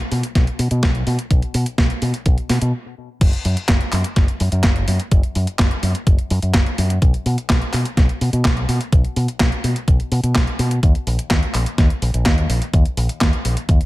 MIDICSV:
0, 0, Header, 1, 3, 480
1, 0, Start_track
1, 0, Tempo, 476190
1, 1317, Time_signature, 4, 2, 24, 8
1, 13968, End_track
2, 0, Start_track
2, 0, Title_t, "Fingered electric bass"
2, 0, Program_c, 0, 33
2, 115, Note_on_c, 0, 47, 86
2, 213, Note_off_c, 0, 47, 0
2, 356, Note_on_c, 0, 35, 84
2, 454, Note_off_c, 0, 35, 0
2, 595, Note_on_c, 0, 47, 85
2, 693, Note_off_c, 0, 47, 0
2, 716, Note_on_c, 0, 47, 93
2, 814, Note_off_c, 0, 47, 0
2, 836, Note_on_c, 0, 35, 82
2, 1031, Note_off_c, 0, 35, 0
2, 1076, Note_on_c, 0, 47, 94
2, 1174, Note_off_c, 0, 47, 0
2, 1316, Note_on_c, 0, 35, 96
2, 1414, Note_off_c, 0, 35, 0
2, 1556, Note_on_c, 0, 47, 91
2, 1654, Note_off_c, 0, 47, 0
2, 1796, Note_on_c, 0, 35, 91
2, 1894, Note_off_c, 0, 35, 0
2, 2035, Note_on_c, 0, 47, 85
2, 2133, Note_off_c, 0, 47, 0
2, 2275, Note_on_c, 0, 35, 96
2, 2373, Note_off_c, 0, 35, 0
2, 2516, Note_on_c, 0, 47, 97
2, 2614, Note_off_c, 0, 47, 0
2, 2637, Note_on_c, 0, 47, 100
2, 2735, Note_off_c, 0, 47, 0
2, 3237, Note_on_c, 0, 30, 98
2, 3334, Note_off_c, 0, 30, 0
2, 3478, Note_on_c, 0, 42, 91
2, 3575, Note_off_c, 0, 42, 0
2, 3717, Note_on_c, 0, 30, 92
2, 3814, Note_off_c, 0, 30, 0
2, 3959, Note_on_c, 0, 42, 85
2, 4055, Note_off_c, 0, 42, 0
2, 4196, Note_on_c, 0, 30, 87
2, 4294, Note_off_c, 0, 30, 0
2, 4439, Note_on_c, 0, 42, 89
2, 4535, Note_off_c, 0, 42, 0
2, 4557, Note_on_c, 0, 42, 98
2, 4654, Note_off_c, 0, 42, 0
2, 4677, Note_on_c, 0, 30, 86
2, 4872, Note_off_c, 0, 30, 0
2, 4916, Note_on_c, 0, 42, 98
2, 5014, Note_off_c, 0, 42, 0
2, 5156, Note_on_c, 0, 30, 100
2, 5254, Note_off_c, 0, 30, 0
2, 5398, Note_on_c, 0, 42, 92
2, 5495, Note_off_c, 0, 42, 0
2, 5636, Note_on_c, 0, 30, 94
2, 5734, Note_off_c, 0, 30, 0
2, 5874, Note_on_c, 0, 42, 89
2, 5973, Note_off_c, 0, 42, 0
2, 6115, Note_on_c, 0, 30, 93
2, 6213, Note_off_c, 0, 30, 0
2, 6357, Note_on_c, 0, 42, 106
2, 6455, Note_off_c, 0, 42, 0
2, 6477, Note_on_c, 0, 42, 88
2, 6574, Note_off_c, 0, 42, 0
2, 6596, Note_on_c, 0, 30, 84
2, 6694, Note_off_c, 0, 30, 0
2, 6836, Note_on_c, 0, 42, 99
2, 7031, Note_off_c, 0, 42, 0
2, 7075, Note_on_c, 0, 35, 102
2, 7173, Note_off_c, 0, 35, 0
2, 7315, Note_on_c, 0, 47, 90
2, 7413, Note_off_c, 0, 47, 0
2, 7555, Note_on_c, 0, 35, 94
2, 7654, Note_off_c, 0, 35, 0
2, 7797, Note_on_c, 0, 47, 89
2, 7894, Note_off_c, 0, 47, 0
2, 8035, Note_on_c, 0, 35, 90
2, 8134, Note_off_c, 0, 35, 0
2, 8277, Note_on_c, 0, 47, 87
2, 8374, Note_off_c, 0, 47, 0
2, 8396, Note_on_c, 0, 47, 96
2, 8494, Note_off_c, 0, 47, 0
2, 8516, Note_on_c, 0, 35, 85
2, 8711, Note_off_c, 0, 35, 0
2, 8755, Note_on_c, 0, 47, 97
2, 8853, Note_off_c, 0, 47, 0
2, 8997, Note_on_c, 0, 35, 96
2, 9094, Note_off_c, 0, 35, 0
2, 9236, Note_on_c, 0, 47, 92
2, 9334, Note_off_c, 0, 47, 0
2, 9475, Note_on_c, 0, 35, 95
2, 9574, Note_off_c, 0, 35, 0
2, 9715, Note_on_c, 0, 47, 87
2, 9813, Note_off_c, 0, 47, 0
2, 9956, Note_on_c, 0, 35, 91
2, 10054, Note_off_c, 0, 35, 0
2, 10195, Note_on_c, 0, 47, 103
2, 10294, Note_off_c, 0, 47, 0
2, 10315, Note_on_c, 0, 47, 86
2, 10413, Note_off_c, 0, 47, 0
2, 10436, Note_on_c, 0, 35, 80
2, 10534, Note_off_c, 0, 35, 0
2, 10675, Note_on_c, 0, 47, 94
2, 10871, Note_off_c, 0, 47, 0
2, 10915, Note_on_c, 0, 39, 98
2, 11013, Note_off_c, 0, 39, 0
2, 11155, Note_on_c, 0, 34, 90
2, 11253, Note_off_c, 0, 34, 0
2, 11396, Note_on_c, 0, 39, 96
2, 11494, Note_off_c, 0, 39, 0
2, 11636, Note_on_c, 0, 34, 86
2, 11734, Note_off_c, 0, 34, 0
2, 11876, Note_on_c, 0, 39, 87
2, 11974, Note_off_c, 0, 39, 0
2, 12115, Note_on_c, 0, 34, 89
2, 12213, Note_off_c, 0, 34, 0
2, 12235, Note_on_c, 0, 34, 96
2, 12333, Note_off_c, 0, 34, 0
2, 12356, Note_on_c, 0, 39, 86
2, 12551, Note_off_c, 0, 39, 0
2, 12594, Note_on_c, 0, 34, 101
2, 12693, Note_off_c, 0, 34, 0
2, 12837, Note_on_c, 0, 39, 101
2, 12934, Note_off_c, 0, 39, 0
2, 13074, Note_on_c, 0, 34, 92
2, 13173, Note_off_c, 0, 34, 0
2, 13317, Note_on_c, 0, 39, 95
2, 13415, Note_off_c, 0, 39, 0
2, 13557, Note_on_c, 0, 34, 88
2, 13655, Note_off_c, 0, 34, 0
2, 13797, Note_on_c, 0, 39, 88
2, 13895, Note_off_c, 0, 39, 0
2, 13968, End_track
3, 0, Start_track
3, 0, Title_t, "Drums"
3, 116, Note_on_c, 9, 46, 107
3, 217, Note_off_c, 9, 46, 0
3, 236, Note_on_c, 9, 42, 54
3, 337, Note_off_c, 9, 42, 0
3, 356, Note_on_c, 9, 36, 106
3, 358, Note_on_c, 9, 38, 56
3, 358, Note_on_c, 9, 42, 52
3, 457, Note_off_c, 9, 36, 0
3, 459, Note_off_c, 9, 38, 0
3, 459, Note_off_c, 9, 42, 0
3, 477, Note_on_c, 9, 42, 26
3, 578, Note_off_c, 9, 42, 0
3, 596, Note_on_c, 9, 46, 105
3, 697, Note_off_c, 9, 46, 0
3, 715, Note_on_c, 9, 42, 53
3, 816, Note_off_c, 9, 42, 0
3, 835, Note_on_c, 9, 38, 109
3, 835, Note_on_c, 9, 42, 51
3, 836, Note_on_c, 9, 36, 112
3, 936, Note_off_c, 9, 38, 0
3, 936, Note_off_c, 9, 42, 0
3, 937, Note_off_c, 9, 36, 0
3, 956, Note_on_c, 9, 42, 26
3, 1057, Note_off_c, 9, 42, 0
3, 1076, Note_on_c, 9, 46, 105
3, 1177, Note_off_c, 9, 46, 0
3, 1196, Note_on_c, 9, 42, 53
3, 1297, Note_off_c, 9, 42, 0
3, 1316, Note_on_c, 9, 36, 110
3, 1316, Note_on_c, 9, 42, 54
3, 1417, Note_off_c, 9, 36, 0
3, 1417, Note_off_c, 9, 42, 0
3, 1436, Note_on_c, 9, 42, 27
3, 1537, Note_off_c, 9, 42, 0
3, 1555, Note_on_c, 9, 46, 109
3, 1656, Note_off_c, 9, 46, 0
3, 1675, Note_on_c, 9, 42, 52
3, 1776, Note_off_c, 9, 42, 0
3, 1796, Note_on_c, 9, 36, 115
3, 1796, Note_on_c, 9, 38, 114
3, 1796, Note_on_c, 9, 42, 53
3, 1897, Note_off_c, 9, 36, 0
3, 1897, Note_off_c, 9, 38, 0
3, 1897, Note_off_c, 9, 42, 0
3, 1915, Note_on_c, 9, 42, 27
3, 2016, Note_off_c, 9, 42, 0
3, 2035, Note_on_c, 9, 46, 108
3, 2135, Note_off_c, 9, 46, 0
3, 2155, Note_on_c, 9, 42, 54
3, 2256, Note_off_c, 9, 42, 0
3, 2274, Note_on_c, 9, 42, 52
3, 2276, Note_on_c, 9, 36, 110
3, 2375, Note_off_c, 9, 42, 0
3, 2377, Note_off_c, 9, 36, 0
3, 2396, Note_on_c, 9, 42, 27
3, 2496, Note_off_c, 9, 42, 0
3, 2515, Note_on_c, 9, 38, 56
3, 2515, Note_on_c, 9, 46, 106
3, 2616, Note_off_c, 9, 38, 0
3, 2616, Note_off_c, 9, 46, 0
3, 2636, Note_on_c, 9, 42, 53
3, 2737, Note_off_c, 9, 42, 0
3, 3237, Note_on_c, 9, 36, 117
3, 3237, Note_on_c, 9, 42, 55
3, 3237, Note_on_c, 9, 49, 102
3, 3337, Note_off_c, 9, 36, 0
3, 3338, Note_off_c, 9, 42, 0
3, 3338, Note_off_c, 9, 49, 0
3, 3358, Note_on_c, 9, 42, 28
3, 3459, Note_off_c, 9, 42, 0
3, 3477, Note_on_c, 9, 46, 103
3, 3578, Note_off_c, 9, 46, 0
3, 3597, Note_on_c, 9, 42, 54
3, 3698, Note_off_c, 9, 42, 0
3, 3717, Note_on_c, 9, 36, 123
3, 3717, Note_on_c, 9, 38, 117
3, 3717, Note_on_c, 9, 39, 95
3, 3717, Note_on_c, 9, 42, 57
3, 3817, Note_off_c, 9, 36, 0
3, 3818, Note_off_c, 9, 38, 0
3, 3818, Note_off_c, 9, 39, 0
3, 3818, Note_off_c, 9, 42, 0
3, 3837, Note_on_c, 9, 42, 27
3, 3938, Note_off_c, 9, 42, 0
3, 3956, Note_on_c, 9, 39, 55
3, 3956, Note_on_c, 9, 46, 107
3, 4057, Note_off_c, 9, 39, 0
3, 4057, Note_off_c, 9, 46, 0
3, 4076, Note_on_c, 9, 42, 54
3, 4177, Note_off_c, 9, 42, 0
3, 4196, Note_on_c, 9, 38, 60
3, 4196, Note_on_c, 9, 42, 55
3, 4197, Note_on_c, 9, 36, 119
3, 4297, Note_off_c, 9, 38, 0
3, 4297, Note_off_c, 9, 42, 0
3, 4298, Note_off_c, 9, 36, 0
3, 4317, Note_on_c, 9, 42, 27
3, 4418, Note_off_c, 9, 42, 0
3, 4436, Note_on_c, 9, 46, 107
3, 4537, Note_off_c, 9, 46, 0
3, 4556, Note_on_c, 9, 42, 57
3, 4657, Note_off_c, 9, 42, 0
3, 4674, Note_on_c, 9, 38, 114
3, 4674, Note_on_c, 9, 39, 92
3, 4674, Note_on_c, 9, 42, 52
3, 4677, Note_on_c, 9, 36, 121
3, 4775, Note_off_c, 9, 38, 0
3, 4775, Note_off_c, 9, 39, 0
3, 4775, Note_off_c, 9, 42, 0
3, 4778, Note_off_c, 9, 36, 0
3, 4796, Note_on_c, 9, 42, 28
3, 4896, Note_off_c, 9, 42, 0
3, 4916, Note_on_c, 9, 46, 108
3, 5016, Note_off_c, 9, 46, 0
3, 5035, Note_on_c, 9, 42, 55
3, 5136, Note_off_c, 9, 42, 0
3, 5155, Note_on_c, 9, 42, 55
3, 5157, Note_on_c, 9, 36, 122
3, 5256, Note_off_c, 9, 42, 0
3, 5258, Note_off_c, 9, 36, 0
3, 5276, Note_on_c, 9, 42, 28
3, 5377, Note_off_c, 9, 42, 0
3, 5396, Note_on_c, 9, 46, 103
3, 5497, Note_off_c, 9, 46, 0
3, 5516, Note_on_c, 9, 42, 53
3, 5617, Note_off_c, 9, 42, 0
3, 5636, Note_on_c, 9, 36, 127
3, 5636, Note_on_c, 9, 38, 124
3, 5636, Note_on_c, 9, 39, 94
3, 5636, Note_on_c, 9, 42, 53
3, 5737, Note_off_c, 9, 36, 0
3, 5737, Note_off_c, 9, 38, 0
3, 5737, Note_off_c, 9, 39, 0
3, 5737, Note_off_c, 9, 42, 0
3, 5756, Note_on_c, 9, 42, 27
3, 5857, Note_off_c, 9, 42, 0
3, 5875, Note_on_c, 9, 46, 103
3, 5976, Note_off_c, 9, 46, 0
3, 5996, Note_on_c, 9, 42, 56
3, 6097, Note_off_c, 9, 42, 0
3, 6116, Note_on_c, 9, 36, 123
3, 6116, Note_on_c, 9, 42, 53
3, 6216, Note_off_c, 9, 42, 0
3, 6217, Note_off_c, 9, 36, 0
3, 6235, Note_on_c, 9, 42, 27
3, 6336, Note_off_c, 9, 42, 0
3, 6355, Note_on_c, 9, 46, 98
3, 6456, Note_off_c, 9, 46, 0
3, 6476, Note_on_c, 9, 42, 54
3, 6577, Note_off_c, 9, 42, 0
3, 6596, Note_on_c, 9, 36, 127
3, 6596, Note_on_c, 9, 38, 119
3, 6596, Note_on_c, 9, 39, 91
3, 6596, Note_on_c, 9, 42, 52
3, 6696, Note_off_c, 9, 36, 0
3, 6697, Note_off_c, 9, 38, 0
3, 6697, Note_off_c, 9, 39, 0
3, 6697, Note_off_c, 9, 42, 0
3, 6717, Note_on_c, 9, 42, 27
3, 6818, Note_off_c, 9, 42, 0
3, 6837, Note_on_c, 9, 46, 102
3, 6937, Note_off_c, 9, 46, 0
3, 6957, Note_on_c, 9, 42, 52
3, 7058, Note_off_c, 9, 42, 0
3, 7076, Note_on_c, 9, 36, 123
3, 7077, Note_on_c, 9, 42, 53
3, 7176, Note_off_c, 9, 36, 0
3, 7178, Note_off_c, 9, 42, 0
3, 7197, Note_on_c, 9, 42, 26
3, 7298, Note_off_c, 9, 42, 0
3, 7317, Note_on_c, 9, 46, 104
3, 7417, Note_off_c, 9, 46, 0
3, 7438, Note_on_c, 9, 42, 51
3, 7539, Note_off_c, 9, 42, 0
3, 7556, Note_on_c, 9, 36, 126
3, 7557, Note_on_c, 9, 38, 125
3, 7557, Note_on_c, 9, 39, 93
3, 7557, Note_on_c, 9, 42, 52
3, 7657, Note_off_c, 9, 36, 0
3, 7658, Note_off_c, 9, 38, 0
3, 7658, Note_off_c, 9, 39, 0
3, 7658, Note_off_c, 9, 42, 0
3, 7677, Note_on_c, 9, 42, 26
3, 7778, Note_off_c, 9, 42, 0
3, 7797, Note_on_c, 9, 39, 54
3, 7797, Note_on_c, 9, 46, 106
3, 7898, Note_off_c, 9, 39, 0
3, 7898, Note_off_c, 9, 46, 0
3, 7917, Note_on_c, 9, 42, 53
3, 8018, Note_off_c, 9, 42, 0
3, 8036, Note_on_c, 9, 36, 123
3, 8037, Note_on_c, 9, 38, 64
3, 8037, Note_on_c, 9, 42, 52
3, 8137, Note_off_c, 9, 36, 0
3, 8138, Note_off_c, 9, 38, 0
3, 8138, Note_off_c, 9, 42, 0
3, 8157, Note_on_c, 9, 42, 26
3, 8258, Note_off_c, 9, 42, 0
3, 8278, Note_on_c, 9, 46, 101
3, 8379, Note_off_c, 9, 46, 0
3, 8398, Note_on_c, 9, 42, 53
3, 8499, Note_off_c, 9, 42, 0
3, 8516, Note_on_c, 9, 36, 127
3, 8517, Note_on_c, 9, 38, 124
3, 8517, Note_on_c, 9, 39, 93
3, 8517, Note_on_c, 9, 42, 50
3, 8617, Note_off_c, 9, 36, 0
3, 8618, Note_off_c, 9, 38, 0
3, 8618, Note_off_c, 9, 39, 0
3, 8618, Note_off_c, 9, 42, 0
3, 8637, Note_on_c, 9, 42, 26
3, 8738, Note_off_c, 9, 42, 0
3, 8757, Note_on_c, 9, 46, 102
3, 8858, Note_off_c, 9, 46, 0
3, 8877, Note_on_c, 9, 42, 51
3, 8977, Note_off_c, 9, 42, 0
3, 8996, Note_on_c, 9, 36, 126
3, 8997, Note_on_c, 9, 42, 50
3, 9097, Note_off_c, 9, 36, 0
3, 9098, Note_off_c, 9, 42, 0
3, 9118, Note_on_c, 9, 42, 25
3, 9219, Note_off_c, 9, 42, 0
3, 9237, Note_on_c, 9, 46, 105
3, 9338, Note_off_c, 9, 46, 0
3, 9358, Note_on_c, 9, 42, 51
3, 9459, Note_off_c, 9, 42, 0
3, 9476, Note_on_c, 9, 36, 124
3, 9478, Note_on_c, 9, 38, 125
3, 9478, Note_on_c, 9, 39, 88
3, 9478, Note_on_c, 9, 42, 51
3, 9577, Note_off_c, 9, 36, 0
3, 9579, Note_off_c, 9, 38, 0
3, 9579, Note_off_c, 9, 39, 0
3, 9579, Note_off_c, 9, 42, 0
3, 9598, Note_on_c, 9, 42, 26
3, 9699, Note_off_c, 9, 42, 0
3, 9718, Note_on_c, 9, 46, 101
3, 9818, Note_off_c, 9, 46, 0
3, 9838, Note_on_c, 9, 42, 52
3, 9939, Note_off_c, 9, 42, 0
3, 9956, Note_on_c, 9, 36, 122
3, 9958, Note_on_c, 9, 42, 50
3, 10057, Note_off_c, 9, 36, 0
3, 10059, Note_off_c, 9, 42, 0
3, 10078, Note_on_c, 9, 42, 25
3, 10179, Note_off_c, 9, 42, 0
3, 10197, Note_on_c, 9, 46, 99
3, 10298, Note_off_c, 9, 46, 0
3, 10317, Note_on_c, 9, 42, 51
3, 10418, Note_off_c, 9, 42, 0
3, 10436, Note_on_c, 9, 36, 125
3, 10437, Note_on_c, 9, 38, 121
3, 10437, Note_on_c, 9, 39, 88
3, 10437, Note_on_c, 9, 42, 48
3, 10537, Note_off_c, 9, 36, 0
3, 10538, Note_off_c, 9, 38, 0
3, 10538, Note_off_c, 9, 39, 0
3, 10538, Note_off_c, 9, 42, 0
3, 10558, Note_on_c, 9, 42, 26
3, 10659, Note_off_c, 9, 42, 0
3, 10677, Note_on_c, 9, 46, 101
3, 10778, Note_off_c, 9, 46, 0
3, 10797, Note_on_c, 9, 42, 50
3, 10897, Note_off_c, 9, 42, 0
3, 10916, Note_on_c, 9, 36, 121
3, 10918, Note_on_c, 9, 42, 52
3, 11017, Note_off_c, 9, 36, 0
3, 11019, Note_off_c, 9, 42, 0
3, 11038, Note_on_c, 9, 42, 26
3, 11139, Note_off_c, 9, 42, 0
3, 11158, Note_on_c, 9, 46, 106
3, 11259, Note_off_c, 9, 46, 0
3, 11278, Note_on_c, 9, 42, 50
3, 11379, Note_off_c, 9, 42, 0
3, 11396, Note_on_c, 9, 36, 121
3, 11398, Note_on_c, 9, 38, 121
3, 11398, Note_on_c, 9, 39, 86
3, 11398, Note_on_c, 9, 42, 51
3, 11497, Note_off_c, 9, 36, 0
3, 11499, Note_off_c, 9, 38, 0
3, 11499, Note_off_c, 9, 39, 0
3, 11499, Note_off_c, 9, 42, 0
3, 11518, Note_on_c, 9, 42, 26
3, 11619, Note_off_c, 9, 42, 0
3, 11637, Note_on_c, 9, 39, 52
3, 11637, Note_on_c, 9, 46, 109
3, 11738, Note_off_c, 9, 39, 0
3, 11738, Note_off_c, 9, 46, 0
3, 11757, Note_on_c, 9, 42, 53
3, 11857, Note_off_c, 9, 42, 0
3, 11876, Note_on_c, 9, 36, 122
3, 11876, Note_on_c, 9, 38, 60
3, 11876, Note_on_c, 9, 42, 50
3, 11977, Note_off_c, 9, 36, 0
3, 11977, Note_off_c, 9, 38, 0
3, 11977, Note_off_c, 9, 42, 0
3, 11998, Note_on_c, 9, 42, 26
3, 12099, Note_off_c, 9, 42, 0
3, 12117, Note_on_c, 9, 46, 107
3, 12218, Note_off_c, 9, 46, 0
3, 12238, Note_on_c, 9, 42, 51
3, 12339, Note_off_c, 9, 42, 0
3, 12357, Note_on_c, 9, 36, 122
3, 12357, Note_on_c, 9, 38, 116
3, 12357, Note_on_c, 9, 39, 83
3, 12357, Note_on_c, 9, 42, 49
3, 12457, Note_off_c, 9, 36, 0
3, 12458, Note_off_c, 9, 38, 0
3, 12458, Note_off_c, 9, 39, 0
3, 12458, Note_off_c, 9, 42, 0
3, 12478, Note_on_c, 9, 42, 26
3, 12578, Note_off_c, 9, 42, 0
3, 12596, Note_on_c, 9, 46, 106
3, 12697, Note_off_c, 9, 46, 0
3, 12718, Note_on_c, 9, 42, 50
3, 12819, Note_off_c, 9, 42, 0
3, 12837, Note_on_c, 9, 36, 114
3, 12837, Note_on_c, 9, 42, 53
3, 12938, Note_off_c, 9, 36, 0
3, 12938, Note_off_c, 9, 42, 0
3, 12957, Note_on_c, 9, 42, 26
3, 13058, Note_off_c, 9, 42, 0
3, 13077, Note_on_c, 9, 46, 115
3, 13177, Note_off_c, 9, 46, 0
3, 13198, Note_on_c, 9, 42, 51
3, 13298, Note_off_c, 9, 42, 0
3, 13317, Note_on_c, 9, 36, 116
3, 13318, Note_on_c, 9, 38, 113
3, 13318, Note_on_c, 9, 39, 87
3, 13318, Note_on_c, 9, 42, 52
3, 13418, Note_off_c, 9, 36, 0
3, 13418, Note_off_c, 9, 38, 0
3, 13418, Note_off_c, 9, 39, 0
3, 13418, Note_off_c, 9, 42, 0
3, 13438, Note_on_c, 9, 42, 26
3, 13538, Note_off_c, 9, 42, 0
3, 13557, Note_on_c, 9, 46, 114
3, 13658, Note_off_c, 9, 46, 0
3, 13677, Note_on_c, 9, 42, 55
3, 13778, Note_off_c, 9, 42, 0
3, 13797, Note_on_c, 9, 42, 54
3, 13798, Note_on_c, 9, 36, 114
3, 13898, Note_off_c, 9, 36, 0
3, 13898, Note_off_c, 9, 42, 0
3, 13918, Note_on_c, 9, 42, 26
3, 13968, Note_off_c, 9, 42, 0
3, 13968, End_track
0, 0, End_of_file